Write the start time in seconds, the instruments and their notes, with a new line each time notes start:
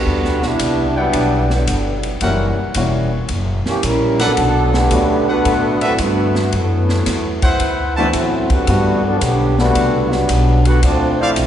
Already playing: trombone section D3 G3 B3 F#4
0.07 upright bass E2, kick
0.25 upright bass D2, snare
0.42 upright bass B1, trombone section G3 B3 D4 E4, snare
0.59 upright bass C2, kick, hi-hat pedal, ride
0.97 trombone section F#3 G3 B3 D4, trumpet section E4 D5 F#5 G5
1.13 upright bass B1, kick, ride
1.50 trombone section D3 F#3 G3 B3, snare
1.67 upright bass G1, kick, hi-hat pedal, ride
2.03 ride
2.21 upright bass F#1, grand piano E3 G3 A#3 C#4 F#4, trumpet section E4 G4 A#4 F#5, kick, ride
2.74 upright bass E1, grand piano E3 G3 A#3 C#4 F#4, kick, hi-hat pedal, ride
3.29 upright bass F#1, kick, ride
3.66 trombone section E3 A#3 C#4 G4, snare
3.83 upright bass A#1, trombone section G3 C#4 E4 A#4, kick, hi-hat pedal, ride
4.19 trombone section F#3 B3 D4 A4, trumpet section D4 A4 B4 F#5, snare, ride
4.37 upright bass B1, kick, ride
4.74 trombone section D3 A3 B3 G4, snare
4.91 upright bass D2, grand piano F#3 A3 B3 D4 F#4, kick, hi-hat pedal, ride
5.28 trombone section D3 A3 B3 F#4, trumpet section D4 A4 B4 F#5
5.45 upright bass A2, kick, ride
5.81 trombone section F#3 A3 C4 E4, trumpet section D4 A4 B4 E5, ride
5.98 upright bass G2, trombone section D3 A3 B3 F#4, kick, hi-hat pedal, ride
6.35 snare
6.52 upright bass F#2, trombone section E3 F#3 A3 B3, kick, ride
6.89 snare
7.06 upright bass E2, kick, snare, hi-hat pedal, ride
7.42 trumpet section E4 B4 C5 F#5, kick, ride
7.60 upright bass D2, kick, ride
7.97 grand piano E3 A3 B3 C4 F#4, trombone section F#3 A3 C4 D4, trumpet section E4 B4 C5 A5
8.13 upright bass A2, trombone section F#3 A3 C4 E4, kick, hi-hat pedal, ride
8.50 trombone section D3 G3 B3 F#4, kick, ride
8.67 upright bass G2, grand piano G3 A3 B3 D4 F#4, kick, ride
9.04 trombone section F#3 B3 D4 A4
9.21 upright bass B1, trombone section D3 F#3 B3 G4, kick, hi-hat pedal, ride
9.58 trombone section D3 G3 B3 F#4, grand piano G3 A3 B3 D4 A4, snare
9.75 upright bass C2, kick, ride
10.10 trombone section F#3 G3 B3 D4, snare
10.29 upright bass B1, kick, hi-hat pedal, ride
10.65 trombone section D3 G3 B3 F#4, ride
10.82 upright bass D2, trombone section F3 A3 C4 D4, kick, ride
11.19 trombone section F3 A3 C4 E4, trumpet section E4 C5 D5 F5
11.36 upright bass C2, kick, hi-hat pedal, ride